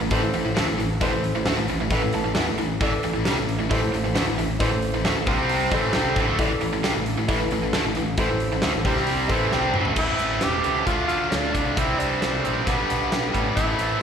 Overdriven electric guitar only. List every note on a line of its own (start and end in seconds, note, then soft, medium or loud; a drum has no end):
0.00 0.10 A2 medium
0.00 0.10 E3 medium
0.12 0.21 A2 medium
0.12 0.22 E3 medium
0.22 0.33 A2 medium
0.22 0.33 E3 medium
0.34 0.45 A2 medium
0.34 0.45 E3 medium
0.46 0.57 A2 medium
0.46 0.57 E3 medium
0.58 0.68 D3 medium
0.58 0.68 A3 loud
0.68 0.77 A2 medium
0.68 0.77 E3 medium
0.79 0.97 A2 medium
0.79 0.97 E3 medium
1.02 1.12 A2 medium
1.02 1.12 E3 medium
1.13 1.31 A2 medium
1.13 1.31 E3 medium
1.35 1.46 A2 medium
1.35 1.46 E3 medium
1.47 1.57 D3 medium
1.47 1.57 A3 loud
1.58 1.68 A2 medium
1.58 1.69 E3 medium
1.69 1.79 A2 medium
1.69 1.80 E3 medium
1.80 1.91 A2 medium
1.80 1.91 E3 medium
1.92 2.01 A2 medium
1.92 2.02 E3 medium
2.02 2.13 A2 medium
2.02 2.13 E3 medium
2.14 2.23 A2 medium
2.14 2.23 E3 medium
2.24 2.35 A2 medium
2.24 2.34 E3 medium
2.35 2.46 E3 medium
2.35 2.47 B3 medium
2.47 2.57 A2 medium
2.47 2.57 E3 medium
2.58 2.76 A2 medium
2.58 2.77 E3 medium
2.81 2.91 A2 medium
2.81 2.92 E3 medium
2.92 muted overdriven electric guitar stroke medium
3.04 3.12 A2 medium
3.04 3.13 E3 medium
3.14 3.25 A2 medium
3.14 3.26 E3 medium
3.25 3.36 C3 medium
3.25 3.37 G3 loud
3.38 3.55 A2 medium
3.38 3.55 E3 medium
3.59 3.68 A2 medium
3.59 3.69 E3 medium
3.69 3.81 A2 medium
3.69 3.81 E3 medium
3.82 3.91 A2 medium
3.82 3.91 E3 medium
3.92 4.03 A2 medium
3.92 4.04 E3 medium
4.04 4.15 A2 medium
4.04 4.15 E3 medium
4.15 4.26 D3 medium
4.15 4.26 A3 medium
4.26 4.37 A2 medium
4.26 4.37 E3 medium
4.38 4.56 A2 medium
4.38 4.56 E3 medium
4.62 4.70 A2 medium
4.62 4.70 E3 medium
4.71 4.89 A2 medium
4.71 4.89 E3 medium
4.94 5.04 A2 medium
4.94 5.05 E3 medium
5.05 5.15 D3 medium
5.05 5.15 A3 medium
5.16 5.27 A2 medium
5.16 5.27 E3 medium
5.27 5.71 C3 medium
5.27 5.72 G3 medium
5.27 5.72 C4 medium
5.71 5.93 A2 medium
5.71 5.94 E3 medium
5.71 5.94 A3 medium
5.94 6.16 C3 medium
5.94 6.16 G3 medium
5.94 6.16 C4 medium
6.16 6.27 A2 medium
6.16 6.27 E3 loud
6.27 6.38 D3 medium
6.27 6.39 A3 loud
6.39 6.49 A2 medium
6.39 6.50 E3 loud
6.51 muted overdriven electric guitar stroke medium
6.61 6.72 A2 medium
6.61 6.72 E3 medium
6.73 6.83 A2 medium
6.73 6.83 E3 medium
6.83 6.94 C3 medium
6.83 6.94 G3 loud
6.95 7.13 A2 medium
6.95 7.13 E3 medium
7.18 7.27 A2 medium
7.18 7.28 E3 medium
7.28 7.39 A2 medium
7.28 7.39 E3 loud
7.41 7.51 A2 medium
7.41 7.51 E3 medium
7.52 7.61 A2 medium
7.52 7.62 E3 medium
7.62 7.73 A2 medium
7.62 7.73 E3 medium
7.73 7.84 D3 medium
7.73 7.84 A3 medium
7.86 7.96 A2 medium
7.86 7.96 E3 medium
7.97 8.14 A2 medium
7.97 8.15 E3 medium
8.19 8.29 A2 medium
8.19 8.30 E3 medium
8.31 8.48 A2 medium
8.31 8.48 E3 medium
8.52 8.63 A2 medium
8.52 8.63 E3 medium
8.63 8.74 D3 medium
8.63 8.74 A3 medium
8.75 8.85 A2 medium
8.75 8.86 E3 medium
8.86 9.30 C3 medium
8.86 9.30 G3 medium
8.86 9.30 C4 medium
9.30 9.52 A2 medium
9.30 9.53 E3 medium
9.30 9.52 A3 loud
9.53 9.74 C3 medium
9.53 9.75 G3 medium
9.53 9.75 C4 medium
9.75 9.86 A2 medium
9.75 9.86 E3 medium
9.86 9.97 D3 medium
9.86 9.97 A3 medium
9.97 10.63 A2 medium
9.97 10.64 E3 medium
9.97 10.63 A3 medium
10.64 10.86 A2 medium
10.64 10.86 E3 medium
10.64 10.86 A3 medium
10.86 11.53 D3 medium
10.86 11.54 A3 medium
10.86 11.53 D4 medium
11.54 11.76 D3 medium
11.54 11.76 A3 medium
11.54 11.75 D4 medium
11.76 12.43 C3 medium
11.76 12.43 G3 medium
11.76 12.43 C4 medium
12.44 12.66 C3 medium
12.44 12.66 G3 medium
12.44 12.65 C4 medium
12.66 13.33 G2 medium
12.66 13.33 D3 medium
12.66 13.32 G3 medium
13.34 13.56 G2 medium
13.34 13.56 D3 medium
13.34 13.55 G3 medium
13.56 14.02 A2 medium
13.56 14.02 E3 medium
13.56 14.02 A3 medium